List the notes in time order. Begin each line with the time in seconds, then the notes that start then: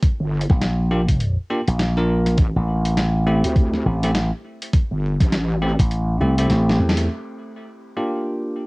0.03 kick, closed hi-hat
0.20 G1
0.41 closed hi-hat
0.50 A#1, kick, snare
0.62 snare, closed hi-hat
0.91 A#3 D4 F4 G4
1.09 kick, closed hi-hat
1.20 closed hi-hat
1.50 A#3 D4 F4 G4
1.68 A#1, closed hi-hat
1.79 snare, closed hi-hat
1.97 A#3 D4 F4 A#4, snare
2.26 snare, closed hi-hat
2.38 A1, kick, closed hi-hat
2.56 A1
2.85 closed hi-hat
2.97 snare, closed hi-hat
3.27 A3 C4 E4 G4
3.44 D2, closed hi-hat
3.56 kick, closed hi-hat
3.73 snare
3.86 A1
4.03 A3 C4 E4 G4, snare, closed hi-hat
4.15 snare, closed hi-hat
4.62 closed hi-hat
4.73 kick, closed hi-hat
4.91 G1
5.20 A1, kick, snare, closed hi-hat
5.32 snare, closed hi-hat
5.62 A3 C4 E4 G4
5.79 A1, kick, closed hi-hat
5.91 closed hi-hat
6.20 C2 A3 C4 E4 G4
6.38 A3 C4 E4 G4, closed hi-hat
6.50 A1, snare, closed hi-hat
6.69 snare
6.80 E2
6.89 snare
6.97 closed hi-hat
7.09 crash
7.97 A#3 D4 F4 G4